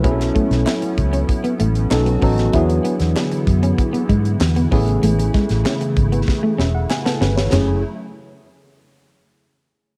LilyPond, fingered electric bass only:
\new Staff \with { instrumentName = "Fingered electric bass" } { \clef bass \time 4/4 \key fis \minor \tempo 4 = 96 b,,8 r16 b,,16 r8 cis,8 r8 a,,8 b,,8 a,,8 | e,8 r16 e,16 r8 fis,8 r8 gis,8 e,8 a,,8 | a,,8 r16 a,,16 r8 gis,,8 r8 e,,8 r8 g,,8 | fis,,8 r2. r8 | }